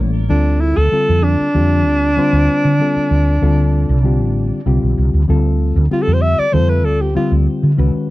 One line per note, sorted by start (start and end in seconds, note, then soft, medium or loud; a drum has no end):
0.00 0.28 A1 medium
0.00 0.22 G3 medium
0.00 0.23 A3 medium
0.00 0.22 A#3 medium
0.00 0.23 C#4 medium
0.00 0.23 E4 medium
0.28 0.75 D2 medium
0.28 0.84 D3 medium
0.28 0.84 G3 medium
0.28 0.85 C4 medium
0.28 0.62 D4 medium
0.28 0.85 F4 medium
0.28 0.85 A4 medium
0.61 0.79 E4 medium
0.77 0.91 D2 medium
0.77 1.25 A4 medium
0.92 1.47 D3 medium
0.92 1.47 G3 medium
0.92 1.47 C4 medium
0.92 1.48 F4 medium
0.92 1.48 A4 medium
1.09 1.38 F2 medium
1.24 4.67 D4 medium
1.40 muted fretless electric bass stroke soft
1.54 1.86 F2 medium
1.54 2.09 D3 medium
1.54 2.09 G3 medium
1.54 2.10 C4 medium
1.54 2.10 F4 medium
1.54 2.10 G4 medium
1.86 2.15 D2 medium
2.17 2.72 D3 medium
2.17 2.72 G3 medium
2.17 2.72 C4 medium
2.17 2.72 F4 medium
2.17 2.73 C5 medium
2.17 muted fretless electric bass stroke soft
2.32 2.47 D2 medium
2.64 2.79 D3 medium
2.79 3.34 D3 medium
2.79 3.34 G3 medium
2.79 3.35 C4 medium
2.79 3.35 F4 medium
2.79 3.35 A4 medium
2.96 muted fretless electric bass stroke soft
3.10 3.40 D2 medium
3.41 3.86 D2 medium
3.41 3.96 D3 medium
3.41 3.97 G3 medium
3.41 3.97 C4 medium
3.41 3.97 F4 medium
3.41 3.97 A4 medium
3.89 4.21 C2 medium
4.03 4.59 D3 medium
4.03 4.59 G3 medium
4.03 4.59 C4 medium
4.03 4.60 F4 medium
4.03 4.60 G4 medium
4.21 4.50 A1 medium
4.65 4.81 C2 medium
4.65 5.21 D3 medium
4.65 5.21 G3 medium
4.65 5.21 C4 medium
4.65 5.22 F4 medium
4.65 5.22 G4 medium
4.82 4.96 B1 medium
4.98 5.12 C2 medium
5.13 5.27 D2 medium
5.28 5.73 D2 medium
5.28 5.83 D3 medium
5.28 5.84 G3 medium
5.28 5.84 C4 medium
5.28 5.84 F4 medium
5.28 5.84 A4 medium
5.76 5.90 D2 medium
5.90 6.46 D3 medium
5.90 6.46 G3 medium
5.90 6.46 C4 medium
5.90 6.46 F4 medium
5.90 6.04 F4 medium
5.90 6.47 G4 medium
6.02 6.15 A4 medium
6.07 6.37 F2 medium
6.13 6.23 C5 medium
6.22 6.40 E5 loud
6.39 6.55 D5 medium
6.39 muted fretless electric bass stroke soft
6.52 6.85 F2 medium
6.52 7.08 D3 medium
6.52 7.08 G3 medium
6.52 7.08 C4 medium
6.52 7.09 F4 medium
6.52 7.09 A4 medium
6.52 6.71 C5 medium
6.69 6.87 B4 medium
6.85 7.14 D2 medium
6.85 7.03 A4 medium
7.01 7.16 G4 medium
7.15 7.70 D3 medium
7.15 7.71 G3 medium
7.15 7.71 C4 medium
7.15 7.71 F4 medium
7.15 7.35 F4 medium
7.15 7.71 G4 medium
7.15 muted fretless electric bass stroke soft
7.31 7.46 D2 medium
7.63 7.77 D3 medium
7.77 7.93 C#2 loud
7.77 8.10 D#3 medium
7.77 8.10 G#3 medium
7.77 8.10 C#4 medium
7.77 8.10 F#4 medium
7.77 8.10 B4 medium
7.94 muted fretless electric bass stroke soft